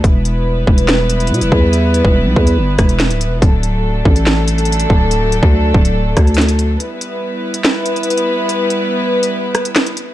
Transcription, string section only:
\new Staff \with { instrumentName = "String section" } { \time 4/4 \key e \minor \tempo 4 = 142 <g b e' b'>1~ | <g b e' b'>1 | <fis a d' a'>1~ | <fis a d' a'>1 |
<g b e' b'>1~ | <g b e' b'>1 | }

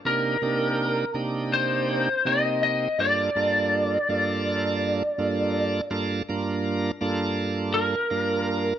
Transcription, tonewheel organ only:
\new Staff \with { instrumentName = "Tonewheel organ" } { \time 4/4 \key g \minor \tempo 4 = 82 <c bes d' ees' g'>8 <c bes d' ees' g'>4 <c bes d' ees' g'>4. <c bes c' ees' g'>4 | <g, bes d' f' a'>8 <g, bes d' f' a'>4 <g, bes d' f' a'>4. <g, bes d' f' a'>4 | <g, bes d' f' a'>8 <g, bes d' f' bes'>4 <g, bes d' f' a'>4. <g, bes d' f' bes'>4 | }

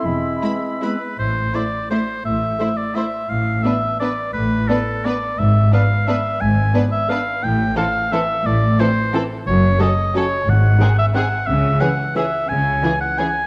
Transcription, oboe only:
\new Staff \with { instrumentName = "Oboe" } { \time 3/4 \key a \minor \tempo 4 = 174 b''2 b'4 | c''4 d''4 c''4 | e''4. d''8 e''4 | f''4 e''4 d''4 |
b'4 a'4 d''4 | e''4 f''4 e''4 | gis''4. e''8 f''4 | g''4 f''4 e''4 |
d''4 c''4 r4 | \key cis \minor cis''4 dis''4 cis''4 | fis''4. e''8 fis''4 | e''4 fis''4 e''4 |
gis''4. fis''8 gis''4 | }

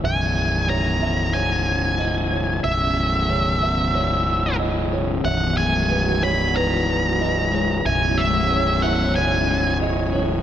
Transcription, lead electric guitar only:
\new Staff \with { instrumentName = "Lead electric guitar" } { \time 4/4 \key e \lydian \tempo 4 = 92 gis''4 ais''4 gis''2 | e''2. r4 | fis''8 gis''4 b''8 ais''2 | gis''8 e''4 fis''8 gis''4 r4 | }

